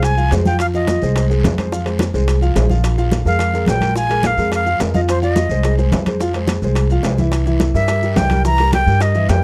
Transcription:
Already playing: C2 G#3 G#4 C5
0.03 G#5, high bongo, high conga, high timbale, long guiro, maracas
0.17 F3 F4 F5, high bongo, high conga, maracas
0.31 F2 G#3 G#4 C5, high bongo, low bongo, high conga, high timbale, low timbale, short guiro, maracas
0.45 F3 F4 F5 G5, high bongo, high conga, short guiro, maracas
0.59 F5, high bongo, high conga, high timbale, long guiro, maracas
0.74 F3 F4 D#5 F5, high bongo, high conga, maracas
0.87 high bongo, high conga, high timbale, low timbale, short guiro, maracas
1.02 C2 G#3 G#4 C5, high conga, short guiro, maracas
1.16 G#3 G#4 C5, high bongo, high conga, high timbale, long guiro, maracas
1.30 G#3 G#4 C5, high bongo, high conga, maracas
1.44 F2, high bongo, low bongo, high conga, high timbale, low timbale, short guiro, maracas
1.58 G#3 G#4 C5, high bongo, high conga, high timbale, short guiro, maracas
1.72 F3 F4 F5, high bongo, high conga, long guiro, maracas
1.85 G#3 G#4 C5, high bongo, high conga, high timbale, maracas
1.99 high bongo, high conga, high timbale, low timbale, short guiro, maracas
2.14 C2 G#3 G#4 C5, high conga, short guiro, maracas
2.28 high bongo, high conga, high timbale, long guiro, maracas
2.42 F3 F4 F5, high bongo, high conga, maracas
2.55 A#1 G#3 G#4 C5, high bongo, low bongo, high conga, high timbale, low timbale, short guiro, maracas
2.69 F3 F4 F5, high bongo, high conga, short guiro, maracas
2.84 high bongo, high conga, high timbale, long guiro, maracas
2.97 F3 F4 F5, high bongo, high conga, maracas
3.12 high bongo, high conga, high timbale, low timbale, short guiro, maracas
3.25 F2 G#3 G#4 A#4 F5, high conga, short guiro, maracas
3.39 G#3 G#4 A#4, high bongo, high conga, high timbale, long guiro, maracas
3.53 G#3 G#4 A#4, high bongo, high conga, maracas
3.66 A#1 G5, high bongo, low bongo, high conga, high timbale, low timbale, short guiro, maracas
3.81 G#3 G#4 A#4, high bongo, high conga, high timbale, short guiro, maracas
3.94 F3 F4 F5 G#5, high bongo, high conga, long guiro, maracas
4.09 G#3 G#4 A#4, high bongo, high conga, high timbale, maracas
4.23 F5, high bongo, high conga, high timbale, low timbale, short guiro, maracas
4.37 F2 G#3 G#4 A#4, high conga, short guiro, maracas
4.51 F5, high bongo, high conga, high timbale, long guiro, maracas
4.66 F3 F4 F5, high bongo, high conga, maracas
4.79 F2 G#3 G#4 A#4, high bongo, low bongo, high conga, high timbale, low timbale, short guiro, maracas
4.94 F3 F4 D#5 F5, high bongo, high conga, short guiro, maracas
5.08 C5, high bongo, high conga, high timbale, long guiro, maracas
5.22 F3 F4 D#5 F5, high bongo, high conga, maracas
5.36 high bongo, high conga, high timbale, low timbale, short guiro, maracas
5.49 C2 G#3 G#4 C5, high conga, short guiro, maracas
5.63 G#3 G#4 C5, high bongo, high conga, high timbale, long guiro, maracas
5.78 G#3 G#4 C5, high bongo, high conga, maracas
5.91 F2, high bongo, low bongo, high conga, high timbale, low timbale, short guiro, maracas
6.06 G#3 G#4 C5, high bongo, high conga, high timbale, short guiro, maracas
6.20 F3 F4 F5, high bongo, high conga, long guiro, maracas
6.34 G#3 G#4 C5, high bongo, high conga, high timbale, maracas
6.48 high bongo, high conga, high timbale, low timbale, short guiro, maracas
6.62 C2 G#3 G#4 C5, high conga, short guiro, maracas
6.75 high bongo, high conga, high timbale, long guiro, maracas
6.90 F3 F4 F5, high bongo, high conga, maracas
7.03 C2 G#3 G#4 C5, high bongo, low bongo, high conga, high timbale, low timbale, short guiro, maracas
7.18 E3 E4 E5, high bongo, high conga, short guiro, maracas
7.32 high bongo, high conga, high timbale, long guiro, maracas
7.46 E3 E4 E5, high bongo, high conga, maracas
7.60 high bongo, high conga, high timbale, low timbale, short guiro, maracas
7.74 G2 G3 G4 A#4 E5, high conga, short guiro, maracas
7.88 G3 G4 A#4, high bongo, high conga, high timbale, long guiro, maracas
8.02 G3 G4 A#4, high bongo, high conga, maracas
8.16 C2 G5, high bongo, low bongo, high conga, high timbale, low timbale, short guiro, maracas
8.30 G3 G4 A#4, high bongo, high conga, high timbale, short guiro, maracas
8.45 E3 E4 E5 A#5, high bongo, high conga, long guiro, maracas
8.58 G3 G4 A#4, high bongo, high conga, high timbale, maracas
8.73 G5, high bongo, high conga, high timbale, low timbale, short guiro, maracas
8.86 G2 G3 G4 A#4, high conga, short guiro, maracas
9.01 D#5, high bongo, high conga, high timbale, long guiro, maracas
9.15 E3 E4 E5, high bongo, high conga, maracas
9.29 F2 G3 G4 A#4 G5, high bongo, low bongo, high conga, high timbale, low timbale, short guiro, maracas

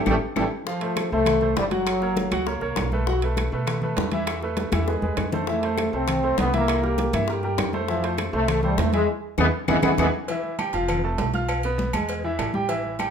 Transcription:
0.06 A1 E3 G3 A3 E4 G4 A4, low bongo, high conga, high timbale, claves
0.36 A1 E3 G3 A3 E4 G4 A4, low bongo, high conga, high timbale, claves
0.66 F3 F4 F5, high bongo, high conga
0.81 A3 A4 C5, high conga, high timbale
0.96 high bongo, high conga, high timbale, low timbale, claves
1.11 C2 A3 A4 C5, high conga
1.26 high bongo, high conga, low conga, high timbale, claves
1.41 A3 A4 C5, high conga, low conga
1.56 F#1 G3, high bongo, low bongo, high conga, high timbale, low timbale
1.71 F#3 F#4 F#5, high conga, high timbale
1.86 high bongo, high conga, high timbale, claves
2.01 A#3 A#4 C#5, high bongo, high conga
2.17 high bongo, high conga, high timbale, low timbale
2.31 C#2 F#3 F#4 F#5, high conga, high timbale, claves
2.46 A#3 A#4 C#5, high bongo, high conga
2.61 C2 A#3 A#4 C#5, high bongo, high conga
2.76 B1, high bongo, low bongo, high conga, high timbale, low timbale, claves
2.92 A3 A4 B4, high bongo, high conga
3.07 F#3 F#4 F#5, high bongo, high conga
3.22 A3 A4 B4, high conga, high timbale
3.37 high bongo, high conga, high timbale, low timbale, claves
3.52 B2 A3 A4 B4, high conga
3.67 high bongo, high conga, low conga, high timbale, claves
3.82 A3 A4 B4, high conga, low conga
3.97 E2, high bongo, low bongo, high conga, high timbale, low timbale
4.12 E3 E4 E5, high conga, high timbale
4.27 high bongo, high conga, high timbale, claves
4.42 A3 A4 B4, high bongo, high conga
4.57 high bongo, high conga, high timbale, low timbale
4.72 E2 E3 E4 E5, high bongo, high conga, high timbale, claves
4.88 G#3 G#4 B4, high bongo, high conga
5.02 E2 G#3 G#4 B4, high conga
5.17 F2, low bongo, high timbale, low timbale, claves
5.32 A3 A4 C5, low bongo, low conga
5.47 E3 A3 E4 E5, high bongo
5.63 A3 A4 C5, high conga, high timbale
5.78 high bongo, high conga, high timbale, low timbale, claves
5.93 C2 A3 C4 A4 C5, high conga
6.08 high bongo, high conga, low conga, high timbale, claves
6.23 A3 A4 C5, high conga
6.38 C2 B3, high bongo, low bongo, high conga, high timbale, low timbale
6.53 E3 A#3 E4 E5, high conga, high timbale
6.68 high bongo, high conga, high timbale, claves
6.83 G3 G4 A#4, high bongo, high conga
6.98 high bongo, high conga, high timbale, low timbale
7.13 G2 E3 E4 E5, high conga, high timbale, claves
7.28 G3 G4 A#4, high bongo
7.43 G3 G4 A#4, high bongo, high conga
7.58 F2, high bongo, low bongo, high conga, high timbale, low timbale, claves
7.73 A3 A4 C5, high bongo, high conga
7.88 E3 F3 E4 E5, high bongo, high conga
8.03 A3 A4 C5, high conga, high timbale
8.18 high bongo, high conga, high timbale, low timbale, claves
8.33 C2 A3 A4 C5, high conga
8.48 A3, high bongo, high conga, low conga, high timbale, claves
8.63 G3 A3 A4 C5, high conga, low conga
8.78 E2 A3, high bongo, low bongo, high conga, high timbale, low timbale
8.93 E3 G#3 E4 E5, high conga, high timbale
9.38 E2 E3 G#3 B3 E4 G#4 B4, low bongo, low conga, high timbale, claves
9.68 E2 E3 G#3 B3 E4 G#4 B4, low bongo, low conga, high timbale, claves
9.82 E2 E3 G#3 B3 E4 G#4 B4, low bongo, low conga, high timbale, claves
9.98 E2 E3 G#3 B3 E4 G#4 B4, low bongo, low conga, high timbale, claves
10.28 E3 E4 E5, cowbell, high conga, low agogo
10.43 high conga
10.59 G3 G4 G5, cowbell, high conga, low timbale, low agogo, claves
10.73 F1 F3 F4 F5, cowbell, high conga, low agogo
10.88 cowbell, high conga, low conga, low agogo, claves
11.04 A3 A4 A5, high conga
11.18 B1, cowbell, high conga, low timbale, low agogo
11.34 F4 F5 F6, cowbell, high conga
11.49 cowbell, high conga, low agogo, claves
11.63 B3 B4 B5, high conga, low agogo
11.78 cowbell, high conga, low timbale
11.93 E2 G#3 G#4 G#5, cowbell, high conga, low agogo, claves
12.09 cowbell, high conga, low agogo
12.24 E3 E4 E5, high conga
12.39 A1, cowbell, high conga, low timbale, low agogo, claves
12.54 G3 G4 G5, high conga
12.69 E3 E4 E5, cowbell, high conga, low agogo
12.84 high conga
12.99 G3 G4 G5, cowbell, high conga, low timbale, low agogo, claves

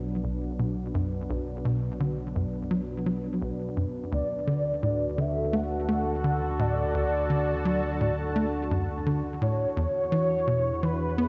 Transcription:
Already playing: B1 B2 F#3 D4 B4 F#5
0.24 B1
0.59 B2
0.95 F#2
1.30 B1
1.65 B2
2.00 D3
2.36 F#2
2.71 F#3
3.06 F#3
3.42 B1
3.77 F#2
4.12 D2 D3 D5
4.45 D3 F#4
4.62 A4
4.83 A2
5.18 D3 E5
5.53 A3 F#5
5.78 A5
5.89 A3
6.24 D3
6.59 A2 D5
6.94 D2
7.30 D3
7.65 F#3
8.01 A2
8.36 A3
8.71 F#2
9.06 D3
9.41 A2 C#5
9.77 E2 E3
10.12 E3
10.18 E4
10.47 B2
10.54 G#4
10.70 B5
10.83 E3 B4
11.18 B3

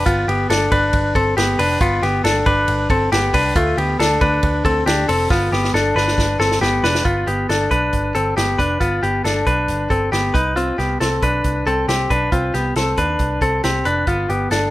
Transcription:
0.06 G1 B3 F4, kick, hi-hat pedal, ride
0.28 G1 B3 G4, ride
0.50 G1 D4 A4, snare, ride
0.72 G1 D4 B4, kick, ride
0.93 G1, kick, ride
1.15 G1 C4 A4, kick, ride
1.37 G1 B3 G4, snare, ride
1.59 F1 D4 B4, open hi-hat, ride
1.81 G1 B3 F4, kick, hi-hat pedal, ride
2.03 G1 B3 G4, snare, ride
2.24 G1 D4 A4, snare, ride
2.46 G1 D4 B4, kick, ride
2.68 G1, ride
2.90 G1 C4 A4, kick, ride
3.12 G1 B3 G4, snare, ride
3.34 C2 D4 B4, kick, open hi-hat, ride
3.56 D2 A3 F4, kick, hi-hat pedal, ride
3.77 D2 B3 G4, ride
3.99 D2 D4 A4, snare, ride
4.21 D2 D4 B4, kick, ride
4.43 D2, kick, ride
4.65 D2 C4 A4, kick, ride
4.86 D2 D4 G4, snare, ride
5.09 F1 C4 A4, open hi-hat, ride
5.30 G1 B3 F4, kick, snare
5.52 G1 B3 G4, snare
5.64 snare
5.74 G1 D4 A4, snare
5.96 G1 D4 B4, snare
6.08 snare
6.18 G1, kick, snare
6.39 G1 C4 A4, snare
6.51 snare
6.61 G1 B3 G4, snare
6.83 F1 D4 B4, snare
6.95 snare
7.05 G1 B3 F4, kick, closed hi-hat
7.27 G1 B3 G4, closed hi-hat
7.49 G1 D4 A4, snare, closed hi-hat
7.71 B1 D4 B4, kick, closed hi-hat
7.93 G1, kick, closed hi-hat
8.15 G1 C4 A4, closed hi-hat
8.37 G1 B3 G4, snare, closed hi-hat
8.59 F1 D4 B4, kick, closed hi-hat
8.80 G1 B3 F4, kick, closed hi-hat
9.03 G1 B3 G4, closed hi-hat
9.24 G1 D4 A4, snare, closed hi-hat
9.46 B1 D4 B4, kick, closed hi-hat
9.68 G1, closed hi-hat
9.90 G1 C4 A4, kick, closed hi-hat
10.12 G1 B3 G4, snare, closed hi-hat
10.34 C2 D#4 B4, kick, closed hi-hat
10.56 C4 F4, closed hi-hat
10.78 C2 B3 G4, snare, closed hi-hat
11.00 C2 C4 A4, snare, closed hi-hat
11.22 B1 D4 B4, kick, closed hi-hat
11.44 C2, kick, closed hi-hat
11.66 C2 C4 A4, closed hi-hat
11.88 C2 C4 G4, snare, closed hi-hat
12.10 B1 D4 B4, kick, closed hi-hat
12.32 C2 C4 F4, kick, closed hi-hat
12.54 C2 B3 G4, snare, closed hi-hat
12.76 C2 C4 A4, snare, closed hi-hat
12.97 D#2 D4 B4, kick, closed hi-hat
13.19 C2, kick, closed hi-hat
13.41 C2 C4 A4, kick, closed hi-hat
13.64 C2 C4 G4, snare, closed hi-hat
13.85 F1 D4 B4, closed hi-hat
14.07 G1 B3 F4, kick, closed hi-hat
14.29 G1 B3 G4, closed hi-hat
14.51 G1 D4 A4, snare, closed hi-hat

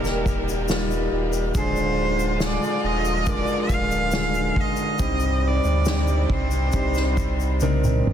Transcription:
Already playing: D#1 A#2 D#3 G3 A#3 D#4 G4 A#4
0.04 snare, shaker
0.25 kick, ride, shaker
0.49 shaker
0.68 G3 A#3 D#4 F4, snare, ride, shaker
0.91 shaker
1.11 D#1, ride
1.33 shaker
1.54 D1 D3 F3 G#3 D4 F4 G#4 C5, kick, ride, shaker
1.76 shaker
1.98 ride
2.19 shaker
2.40 G#3 F4 G#4, snare, ride, shaker
2.44 D5
2.63 shaker
2.83 D#1 D#5, ride
3.05 shaker
3.26 G#3 D4 F4 A#4 D5, kick, shaker
3.47 shaker
3.69 D1 F5, kick, ride, shaker
3.91 shaker
4.11 D3 G#3 F4 G#4, snare, shaker
4.34 shaker
4.56 kick, ride
4.60 D#5
4.76 shaker
4.99 C2 G2 C3 G3 C4 D#4 G4, kick, shaker
5.20 shaker
5.43 D5, ride
5.64 D2, shaker
5.85 C4 D4 D#4 G4, snare, ride, shaker
6.07 shaker
6.30 C2 C5, kick, ride
6.51 shaker
6.72 C2 C4 D4 D#4 G4, kick, ride, shaker
6.94 snare, shaker
7.17 kick, ride, shaker
7.40 shaker
7.60 C4 D4 D#4 A#4, high tom, shaker
7.84 mid tom, shaker
8.07 D#1, mid tom

